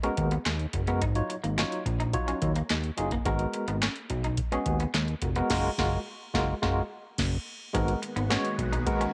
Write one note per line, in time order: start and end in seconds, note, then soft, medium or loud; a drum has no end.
0.03 0.34 G#3 medium
0.03 0.34 B3 medium
0.03 0.14 C#4 medium
0.03 0.34 F#4 medium
0.03 0.34 A#4 loud
0.03 closed hi-hat medium
0.17 0.38 D#2 medium
0.17 muted clean electric guitar stroke soft
0.17 kick medium
0.17 closed hi-hat medium
0.31 0.42 B3 medium
0.31 closed hi-hat medium
0.46 0.66 D#2 medium
0.46 0.56 G#3 medium
0.46 snare medium
0.46 clap medium
0.46 closed hi-hat medium
0.59 closed hi-hat soft
0.73 1.03 F#1 medium
0.73 0.80 F#4 medium
0.73 0.80 A#4 medium
0.73 muted clean electric guitar stroke soft
0.73 kick medium
0.73 closed hi-hat medium
0.87 1.00 G#3 medium
0.87 1.00 B3 medium
0.87 0.98 B3 medium
0.87 1.00 F#4 medium
0.87 1.00 A#4 medium
0.87 closed hi-hat soft
1.02 1.22 G#1 loud
1.02 1.12 D#4 medium
1.02 kick loud
1.02 closed hi-hat loud
1.15 1.34 F#3 medium
1.15 1.34 D#4 medium
1.15 1.34 F4 medium
1.15 1.34 C#5 medium
1.15 closed hi-hat medium
1.30 muted clean electric guitar stroke soft
1.30 closed hi-hat medium
1.44 1.65 G#1 medium
1.44 1.54 A#3 medium
1.44 closed hi-hat soft
1.58 1.82 F#3 medium
1.58 1.68 C#4 medium
1.58 1.82 D#4 medium
1.58 1.83 F4 medium
1.58 1.83 C#5 medium
1.58 snare loud
1.58 clap medium
1.58 closed hi-hat medium
1.72 closed hi-hat medium
1.86 2.17 A#1 medium
1.86 muted clean electric guitar stroke soft
1.86 kick medium
1.86 closed hi-hat medium
2.00 2.10 D#4 medium
2.00 closed hi-hat medium
2.13 2.51 F#3 medium
2.13 2.51 D#4 medium
2.13 2.51 F4 medium
2.13 2.51 C#5 medium
2.13 kick loud
2.13 closed hi-hat medium
2.28 2.38 C#4 medium
2.28 closed hi-hat medium
2.42 2.63 D#2 loud
2.42 muted clean electric guitar stroke soft
2.42 kick medium
2.42 closed hi-hat medium
2.56 2.66 A#3 medium
2.56 closed hi-hat medium
2.70 2.91 D#2 medium
2.70 2.80 G#3 medium
2.70 snare loud
2.70 clap medium
2.70 closed hi-hat medium
2.84 closed hi-hat soft
2.97 3.19 F#1 medium
2.97 3.10 F#3 medium
2.97 3.10 D#4 medium
2.97 3.10 F4 medium
2.97 3.10 G#4 medium
2.97 muted clean electric guitar stroke soft
2.97 closed hi-hat medium
3.11 3.22 A#3 medium
3.11 kick medium
3.11 closed hi-hat soft
3.25 3.46 G#1 loud
3.25 3.75 G#3 medium
3.25 3.36 G#3 medium
3.25 3.75 B3 medium
3.25 3.75 F#4 medium
3.25 3.75 A#4 loud
3.25 kick loud
3.25 closed hi-hat medium
3.39 closed hi-hat medium
3.53 muted clean electric guitar stroke soft
3.53 closed hi-hat medium
3.68 3.89 G#1 medium
3.68 3.78 B3 medium
3.68 closed hi-hat medium
3.82 3.92 C#4 medium
3.82 snare loud
3.82 clap medium
3.82 closed hi-hat medium
3.96 closed hi-hat soft
4.10 4.41 B1 medium
4.10 muted clean electric guitar stroke soft
4.10 kick medium
4.10 closed hi-hat medium
4.24 4.34 D#4 medium
4.24 closed hi-hat medium
4.37 kick loud
4.37 closed hi-hat medium
4.52 4.83 G#3 medium
4.52 4.83 B3 medium
4.52 4.62 C#4 medium
4.52 4.83 F#4 medium
4.52 4.83 G#4 loud
4.52 closed hi-hat medium
4.66 4.87 D#2 medium
4.66 muted clean electric guitar stroke soft
4.66 kick medium
4.66 closed hi-hat medium
4.80 4.90 B3 medium
4.80 closed hi-hat soft
4.94 5.15 D#2 medium
4.94 5.04 G#3 medium
4.94 snare medium
4.94 clap medium
4.94 closed hi-hat medium
5.08 closed hi-hat soft
5.22 5.43 F1 medium
5.22 5.28 F#4 medium
5.22 5.29 A#4 medium
5.22 muted clean electric guitar stroke soft
5.22 kick medium
5.22 closed hi-hat medium
5.36 5.48 G#3 medium
5.36 5.46 B3 medium
5.36 5.49 B3 medium
5.36 5.49 F#4 medium
5.36 5.49 A#4 medium
5.36 closed hi-hat soft
5.50 5.69 F#1 loud
5.50 5.69 G#3 loud
5.50 5.69 F4 loud
5.50 5.70 F#4 loud
5.50 5.70 A#4 medium
5.50 kick loud
5.50 snare loud
5.50 crash medium
5.78 5.97 F#1 loud
5.78 5.98 G#3 loud
5.78 5.98 F4 loud
5.78 5.98 F#4 medium
5.78 5.98 A#4 medium
5.78 kick loud
5.78 snare loud
6.34 6.53 F#1 loud
6.34 6.53 G#3 loud
6.34 6.53 F4 loud
6.34 6.54 F#4 loud
6.34 6.54 A#4 loud
6.34 kick loud
6.34 snare loud
6.62 6.82 F#1 loud
6.62 6.81 G#3 loud
6.62 6.81 F4 medium
6.62 6.82 F#4 loud
6.62 6.82 A#4 loud
6.62 kick loud
6.62 snare medium
7.18 7.38 F#1 loud
7.18 kick loud
7.18 snare loud
7.18 crash medium
7.73 7.95 G#1 loud
7.73 9.13 D#3 medium
7.73 7.99 G#3 medium
7.73 9.13 G#3 medium
7.73 7.85 G#3 medium
7.73 9.13 A#3 medium
7.73 9.13 B3 medium
7.73 7.99 B3 medium
7.73 9.13 F#4 medium
7.73 7.99 F#4 medium
7.73 7.99 A#4 loud
7.73 kick loud
7.73 closed hi-hat medium
7.88 closed hi-hat medium
8.02 muted clean electric guitar stroke soft
8.02 closed hi-hat medium
8.16 8.37 G#1 loud
8.16 8.26 B3 medium
8.16 closed hi-hat medium
8.30 8.55 G#3 medium
8.30 8.55 B3 medium
8.30 8.41 C#4 medium
8.30 8.55 F#4 medium
8.30 8.55 C#5 loud
8.30 snare loud
8.30 clap medium
8.30 closed hi-hat medium
8.45 closed hi-hat medium
8.58 8.90 B1 medium
8.58 muted clean electric guitar stroke soft
8.58 kick loud
8.58 closed hi-hat medium
8.73 8.83 D#4 medium
8.73 closed hi-hat medium
8.86 9.11 G#3 medium
8.86 9.11 B3 medium
8.86 9.11 F#4 medium
8.86 9.11 A#4 loud
8.86 kick loud
8.86 closed hi-hat medium
9.01 9.11 C#4 medium
9.01 closed hi-hat medium